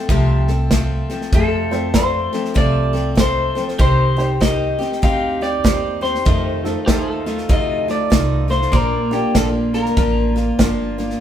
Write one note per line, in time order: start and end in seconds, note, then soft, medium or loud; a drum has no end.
0.00 3.75 A4 medium
0.00 3.76 C5 medium
0.09 1.02 C2 medium
0.09 0.47 F2 medium
0.09 0.48 C3 medium
0.09 0.48 F3 medium
0.09 0.48 A3 loud
0.09 0.48 C4 medium
0.09 0.48 A4 loud
0.09 kick loud
0.09 snare soft
0.47 0.70 F3 soft
0.47 0.71 A3 medium
0.47 0.71 C4 medium
0.47 0.71 A4 medium
0.47 snare soft
0.71 1.09 F3 medium
0.71 1.10 A3 medium
0.71 1.09 C4 medium
0.71 1.08 A4 medium
0.71 kick medium
0.71 snare loud
0.71 hi-hat pedal medium
1.09 1.32 F3 soft
1.09 1.32 A3 medium
1.09 1.32 C4 medium
1.09 1.33 A4 medium
1.09 snare soft
1.21 snare soft
1.32 2.25 F2 medium
1.32 1.71 F2 medium
1.32 1.71 C3 medium
1.32 1.71 F3 medium
1.32 1.72 A3 medium
1.32 1.71 C4 medium
1.32 1.70 A4 medium
1.32 1.97 A4 medium
1.32 kick loud
1.32 snare soft
1.71 1.92 F3 soft
1.71 1.93 A3 soft
1.71 1.93 C4 soft
1.71 1.87 F4 medium
1.71 1.94 A4 medium
1.71 1.87 A4 medium
1.71 1.87 C5 medium
1.71 snare soft
1.94 2.32 F3 medium
1.94 2.33 A3 medium
1.94 2.32 C4 medium
1.94 2.41 F4 medium
1.94 2.41 A4 medium
1.94 2.31 A4 medium
1.94 2.52 C5 medium
1.94 2.41 D5 medium
1.94 kick medium
1.94 snare loud
1.94 hi-hat pedal medium
2.33 2.54 F3 soft
2.33 2.54 A3 soft
2.33 2.54 C4 medium
2.33 2.55 A4 soft
2.33 snare soft
2.45 snare soft
2.54 3.49 C2 medium
2.54 2.94 F2 medium
2.54 2.94 C3 medium
2.54 2.93 F3 medium
2.54 2.93 A3 medium
2.54 2.93 C4 medium
2.54 2.92 A4 medium
2.54 3.20 D5 medium
2.54 kick loud
2.54 snare soft
2.93 3.14 F3 soft
2.93 3.15 A3 soft
2.93 3.16 C4 soft
2.93 3.16 A4 medium
2.93 snare soft
3.15 3.55 F3 medium
3.15 3.56 A3 medium
3.15 3.55 C4 medium
3.15 3.64 F4 medium
3.15 3.64 A4 medium
3.15 3.54 A4 medium
3.15 3.64 D#5 medium
3.15 kick medium
3.15 snare loud
3.15 hi-hat pedal medium
3.20 3.66 C5 medium
3.55 3.78 F3 soft
3.55 3.79 A3 soft
3.55 3.78 C4 soft
3.55 3.79 A4 medium
3.55 snare soft
3.68 snare soft
3.79 4.72 C2 medium
3.79 4.18 C3 medium
3.79 4.18 D#3 medium
3.79 4.17 C4 medium
3.79 4.16 D#4 medium
3.79 6.24 G4 medium
3.79 4.15 G4 medium
3.79 6.25 C5 medium
3.79 4.41 C5 medium
3.79 kick loud
3.79 snare soft
4.16 4.39 C4 soft
4.16 4.40 D#4 soft
4.16 4.34 D#4 medium
4.16 4.40 G4 medium
4.16 4.33 G4 medium
4.16 4.34 C5 medium
4.16 snare soft
4.40 4.79 D#3 medium
4.40 4.79 C4 medium
4.40 4.78 D#4 medium
4.40 4.88 D#4 medium
4.40 4.88 G4 medium
4.40 4.77 G4 medium
4.40 4.88 A#4 medium
4.40 4.99 D#5 medium
4.40 kick medium
4.40 snare loud
4.40 hi-hat pedal medium
4.79 5.02 C4 soft
4.79 5.02 D#4 soft
4.79 5.02 G4 medium
4.79 snare soft
4.92 snare soft
5.02 5.56 D2 medium
5.02 5.41 C3 medium
5.02 5.42 C4 medium
5.02 5.41 D#4 medium
5.02 5.40 G4 medium
5.02 5.42 F5 loud
5.02 kick loud
5.02 snare soft
5.41 5.64 C4 soft
5.41 5.64 D#4 medium
5.41 5.65 G4 soft
5.41 6.02 D5 loud
5.41 snare soft
5.64 6.17 D#2 medium
5.64 6.03 D#3 medium
5.64 6.02 C4 medium
5.64 6.11 D#4 medium
5.64 6.01 D#4 medium
5.64 6.12 G4 medium
5.64 6.00 G4 medium
5.64 6.11 C5 medium
5.64 kick medium
5.64 snare loud
5.64 hi-hat pedal medium
6.01 6.25 C4 soft
6.01 6.25 D#4 medium
6.01 6.26 G4 soft
6.01 7.23 C5 medium
6.01 snare soft
6.15 snare soft
6.25 6.64 F2 medium
6.25 6.73 F2 medium
6.25 6.65 C3 medium
6.25 6.65 D#3 medium
6.25 6.65 A3 medium
6.25 6.65 D#4 medium
6.25 6.64 F4 medium
6.25 kick loud
6.25 snare soft
6.64 6.87 D#3 soft
6.64 6.87 A3 soft
6.64 6.80 D#4 medium
6.64 6.88 D#4 soft
6.64 6.80 F4 medium
6.64 6.88 F4 medium
6.64 6.81 A4 medium
6.64 snare soft
6.86 7.41 D#2 medium
6.86 7.27 D#3 medium
6.86 7.27 A3 medium
6.86 7.35 D#4 medium
6.86 7.26 D#4 medium
6.86 7.35 F4 medium
6.86 7.25 F4 medium
6.86 7.11 G4 medium
6.86 7.35 A4 medium
6.86 8.72 C5 medium
6.86 kick medium
6.86 snare loud
6.86 hi-hat pedal medium
7.11 8.71 A4 medium
7.26 7.51 D#3 medium
7.26 7.49 A3 medium
7.26 7.49 D#4 medium
7.26 7.49 F4 medium
7.26 snare soft
7.38 snare soft
7.49 8.02 D2 medium
7.49 7.88 F2 medium
7.49 7.88 C3 medium
7.49 7.88 A3 medium
7.49 7.87 D#4 medium
7.49 7.87 F4 medium
7.49 kick loud
7.49 snare soft
7.53 7.88 D#5 loud
7.88 8.09 A3 medium
7.88 8.11 D#4 medium
7.88 8.11 F4 medium
7.88 8.50 D5 loud
7.88 snare soft
8.10 8.65 C2 medium
8.10 8.49 D#3 medium
8.10 8.48 A3 medium
8.10 8.48 D#4 medium
8.10 8.59 D#4 medium
8.10 8.47 F4 medium
8.10 8.59 F4 medium
8.10 8.59 A4 medium
8.10 kick medium
8.10 snare loud
8.10 hi-hat pedal medium
8.48 8.72 D#3 soft
8.48 8.72 A3 soft
8.48 8.73 D#4 soft
8.48 8.72 F4 soft
8.48 8.75 C5 medium
8.48 snare soft
8.62 snare soft
8.72 9.20 A#1 medium
8.72 9.11 A#2 medium
8.72 9.12 F3 medium
8.72 11.18 A#3 medium
8.72 9.12 A#3 medium
8.72 9.11 D4 medium
8.72 9.10 F4 medium
8.72 11.18 D5 medium
8.72 kick loud
8.72 snare soft
8.76 9.15 A#4 medium
9.11 9.34 A#3 soft
9.11 9.27 D4 medium
9.11 9.35 D4 medium
9.11 9.35 F4 medium
9.11 9.27 F4 medium
9.11 9.34 G4 medium
9.11 9.27 A#4 medium
9.11 snare soft
9.34 9.88 A#1 medium
9.34 9.74 F3 medium
9.34 9.82 A#3 medium
9.34 9.74 A#3 medium
9.34 9.82 D4 medium
9.34 9.73 D4 medium
9.34 9.82 F4 medium
9.34 9.73 F4 medium
9.34 9.47 A4 medium
9.34 kick medium
9.34 snare loud
9.34 hi-hat pedal medium
9.73 9.96 A#3 soft
9.73 9.96 D4 soft
9.73 9.97 F4 medium
9.73 10.55 A#4 medium
9.73 snare soft
9.85 snare soft
9.97 10.50 A1 medium
9.97 10.36 F3 medium
9.97 10.36 A#3 medium
9.97 10.35 D4 medium
9.97 10.34 F4 medium
9.97 kick loud
9.97 snare soft
10.36 10.59 A#3 soft
10.36 10.60 D4 soft
10.36 10.59 F4 medium
10.36 snare soft
10.58 11.12 G1 medium
10.58 10.98 F3 medium
10.58 10.98 A#3 medium
10.58 11.06 D4 medium
10.58 10.98 D4 medium
10.58 11.06 F4 medium
10.58 10.97 F4 medium
10.58 11.05 A#4 medium
10.58 kick medium
10.58 snare loud
10.58 hi-hat pedal medium
10.98 11.20 A#3 soft
10.98 11.20 D4 medium
10.98 11.20 F4 medium
10.98 snare soft
11.10 snare soft